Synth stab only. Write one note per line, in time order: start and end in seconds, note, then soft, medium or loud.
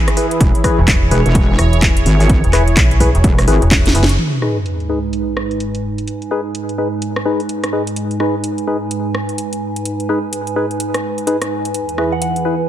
0.17 0.27 E4 medium
0.17 0.27 G#4 medium
0.17 0.27 B4 medium
0.64 0.79 E4 medium
0.64 0.79 G#4 medium
0.64 0.79 B4 loud
1.11 1.21 E4 medium
1.11 1.21 G#4 medium
1.11 1.21 B4 medium
2.53 2.63 E4 medium
2.53 2.63 G#4 medium
2.53 2.63 B4 loud
3.00 3.10 E4 medium
3.00 3.10 G#4 medium
3.00 3.10 B4 medium
3.48 3.63 E4 loud
3.48 3.63 G#4 medium
3.48 3.63 B4 loud
3.95 4.04 E4 medium
3.95 4.04 G#4 medium
3.95 4.04 B4 medium
4.42 4.57 D#4 medium
4.42 4.57 G#4 medium
4.42 4.57 B4 medium
4.89 4.99 D#4 medium
4.89 4.99 G#4 medium
4.89 4.99 B4 medium
6.31 6.41 D#4 medium
6.31 6.41 G#4 medium
6.31 6.41 B4 loud
6.78 6.88 D#4 medium
6.78 6.88 G#4 medium
6.78 6.88 B4 medium
7.25 7.41 D#4 medium
7.25 7.41 G#4 medium
7.25 7.41 B4 loud
7.73 7.82 D#4 medium
7.73 7.82 G#4 medium
7.73 7.82 B4 medium
8.20 8.35 D#4 medium
8.20 8.35 G#4 medium
8.20 8.35 B4 medium
8.67 8.77 D#4 medium
8.67 8.77 G#4 medium
8.67 8.77 B4 medium
10.09 10.19 D#4 medium
10.09 10.19 G#4 medium
10.09 10.19 B4 loud
10.56 10.66 D#4 medium
10.56 10.66 G#4 medium
10.56 10.66 B4 medium
11.27 11.37 D#4 medium
11.27 11.37 G#4 medium
11.27 11.37 B4 loud
11.98 12.13 E4 medium
11.98 12.13 G#4 medium
11.98 12.13 B4 medium
12.45 12.55 E4 medium
12.45 12.55 G#4 medium
12.45 12.55 B4 medium